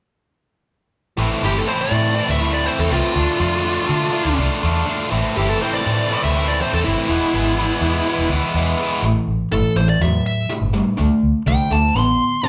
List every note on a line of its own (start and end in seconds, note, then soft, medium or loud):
1.17 1.28 A1 medium
1.17 1.42 A2 medium
1.17 1.43 E3 medium
1.17 1.44 A3 medium
1.17 1.44 C4 medium
1.17 1.44 E4 medium
1.43 1.62 G1 medium
1.43 1.65 A2 medium
1.43 1.66 E3 medium
1.43 1.68 A3 medium
1.43 1.68 C4 medium
1.43 1.68 E4 medium
1.43 1.56 G4 medium
1.58 1.68 A4 medium
1.67 1.91 A2 medium
1.67 1.91 E3 medium
1.67 1.93 A3 medium
1.67 1.93 C4 medium
1.67 1.93 E4 medium
1.67 1.80 C5 medium
1.81 2.28 D5 medium
1.91 2.20 A2 medium
1.91 2.15 A2 medium
1.91 2.15 E3 medium
1.91 2.17 A3 medium
1.91 2.17 C4 medium
1.91 2.16 E4 medium
2.16 2.39 A2 medium
2.16 2.40 E3 medium
2.16 2.41 A3 medium
2.16 2.41 C4 medium
2.16 2.42 E4 medium
2.29 2.67 D2 medium
2.29 2.53 E5 medium
2.40 2.64 A2 medium
2.40 2.64 E3 medium
2.40 2.66 A3 medium
2.40 2.66 C4 medium
2.40 2.66 E4 medium
2.54 2.66 D5 medium
2.65 2.89 A2 medium
2.65 2.90 E3 medium
2.65 2.91 A3 medium
2.65 2.91 C4 medium
2.65 2.91 E4 medium
2.65 2.78 C5 medium
2.79 2.88 E2 medium
2.79 2.91 A4 medium
2.90 3.00 C2 medium
2.90 3.13 A2 medium
2.90 3.14 E3 medium
2.90 3.15 A3 medium
2.90 3.16 C4 medium
2.90 3.14 E4 medium
2.90 4.35 F4 medium
3.15 3.25 D2 medium
3.15 3.38 D3 medium
3.15 3.40 A3 medium
3.15 3.40 D4 medium
3.15 3.40 F4 medium
3.40 3.78 F2 medium
3.40 3.63 D3 medium
3.40 3.65 A3 medium
3.40 3.64 D4 medium
3.40 3.65 F4 medium
3.64 3.85 D3 medium
3.64 3.87 A3 medium
3.64 3.86 D4 medium
3.64 3.87 F4 medium
3.87 4.11 D3 medium
3.87 4.08 D3 medium
3.87 4.12 A3 medium
3.87 4.11 D4 medium
3.87 4.13 F4 medium
4.12 4.36 D3 medium
4.12 4.37 A3 medium
4.12 4.37 D4 medium
4.12 4.38 F4 medium
4.25 4.35 D2 medium
4.37 4.48 C2 medium
4.37 4.60 D3 medium
4.37 4.61 A3 medium
4.37 4.62 D4 medium
4.37 4.62 F4 medium
4.62 4.82 E2 medium
4.62 4.84 D3 medium
4.62 4.85 A3 medium
4.62 4.86 D4 medium
4.62 4.86 F4 medium
4.85 5.09 D3 medium
4.85 5.10 A3 medium
4.85 5.10 D4 medium
4.85 5.11 F4 medium
5.09 5.21 A1 medium
5.09 5.35 A2 medium
5.09 5.36 E3 medium
5.09 5.36 A3 medium
5.09 5.36 C4 medium
5.09 5.37 E4 medium
5.36 5.56 G1 medium
5.36 5.61 A2 medium
5.36 5.62 E3 medium
5.36 5.62 A3 medium
5.36 5.62 C4 medium
5.36 5.63 E4 medium
5.36 5.49 G4 medium
5.49 5.61 A4 medium
5.61 5.84 A2 medium
5.61 5.85 E3 medium
5.61 5.85 A3 medium
5.61 5.85 C4 medium
5.61 5.87 E4 medium
5.61 5.73 C5 medium
5.73 6.21 D5 medium
5.85 6.09 A2 medium
5.85 6.14 A2 medium
5.85 6.11 E3 medium
5.85 6.11 A3 medium
5.85 6.11 C4 medium
5.85 6.12 E4 medium
6.11 6.34 A2 medium
6.11 6.36 E3 medium
6.11 6.36 A3 medium
6.11 6.36 C4 medium
6.11 6.38 E4 medium
6.24 6.61 D2 medium
6.24 6.47 E5 medium
6.35 6.59 A2 medium
6.35 6.60 E3 medium
6.35 6.60 A3 medium
6.35 6.61 C4 medium
6.35 6.62 E4 loud
6.48 6.59 D5 medium
6.60 6.83 A2 medium
6.60 6.84 E3 medium
6.60 6.84 A3 medium
6.60 6.85 C4 medium
6.60 6.86 E4 medium
6.60 6.72 C5 medium
6.73 6.82 E2 medium
6.73 6.84 A4 medium
6.84 6.94 G1 medium
6.84 7.07 A2 medium
6.84 7.09 E3 medium
6.84 7.07 A3 medium
6.84 7.08 C4 medium
6.84 8.27 E4 medium
6.84 7.11 E4 medium
7.09 7.18 E1 medium
7.09 7.32 E3 medium
7.09 7.33 G#3 medium
7.09 7.34 B3 medium
7.09 7.34 E4 medium
7.33 7.71 G#1 medium
7.33 7.57 E3 medium
7.33 7.57 G#3 medium
7.33 7.58 B3 medium
7.33 7.59 E4 medium
7.58 7.82 E3 medium
7.58 7.82 G#3 medium
7.58 7.83 B3 medium
7.58 7.83 E4 medium
7.81 8.00 E2 medium
7.81 8.06 E3 medium
7.81 8.06 G#3 medium
7.81 8.07 B3 medium
7.81 8.08 E4 medium
8.07 8.30 E3 medium
8.07 8.31 G#3 medium
8.07 8.31 B3 medium
8.07 8.32 E4 medium
8.18 8.27 E1 medium
8.29 8.39 D2 medium
8.29 8.54 E3 medium
8.29 8.55 G#3 medium
8.33 8.55 B3 medium
8.33 8.56 E4 medium
8.54 8.73 E2 medium
8.54 8.78 E3 medium
8.54 8.79 G#3 medium
8.54 8.79 B3 medium
8.54 8.80 E4 medium
8.79 9.02 E3 medium
8.79 9.02 G#3 medium
8.79 9.03 B3 medium
8.79 9.03 E4 medium
9.02 9.12 A1 medium
9.02 9.48 A2 medium
9.02 9.48 E3 medium
9.28 9.37 A1 medium
9.52 9.61 G1 medium
9.52 9.74 A2 medium
9.52 9.74 E3 medium
9.52 9.76 A4 medium
9.76 9.95 A1 medium
9.76 9.98 A2 medium
9.76 9.99 E3 medium
9.76 9.88 C5 medium
9.89 10.01 D5 medium
10.00 10.19 E2 medium
10.00 10.45 A2 medium
10.00 10.45 F#3 medium
10.00 10.25 E5 medium
10.26 10.49 E5 medium
10.49 10.71 A2 medium
10.49 10.71 G3 medium
10.61 10.80 G1 medium
10.74 10.96 A2 medium
10.74 10.96 G3 medium
10.98 11.08 D2 loud
10.98 11.41 D3 medium
10.98 11.42 A3 medium
11.23 11.32 D2 medium
11.46 11.56 C2 loud
11.46 11.68 D3 medium
11.46 11.69 A3 medium
11.46 11.71 G5 medium
11.71 11.90 D2 medium
11.71 11.93 D3 medium
11.71 11.93 A3 medium
11.71 11.98 A5 medium
11.95 12.13 A1 loud
11.95 12.39 D3 medium
11.95 12.39 B3 medium
11.95 12.45 C6 medium
12.43 12.49 D3 medium
12.43 12.49 C4 medium
12.43 12.49 A5 medium